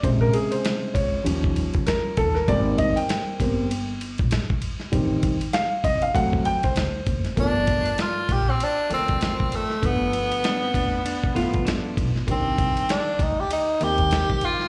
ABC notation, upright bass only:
X:1
M:4/4
L:1/16
Q:"Swing 16ths" 1/4=98
K:Gm
V:1 name="Upright bass" clef=bass
B,,,2 z4 _D,,2 E,,3 D,, z2 E,, z | _A,,,4 z2 G,,,4- G,,, B,,, z4 | A,,,2 z4 C,,2 D,,3 C,, D,,2 ^F,,,2 | G,,,4 z2 B,,,2 z2 D,,3 z3 |
G,,,4 z2 F,,,2 z2 G,,,2 z2 =B,,, z | C,,4 z2 D,,2 z2 E,,3 z3 |]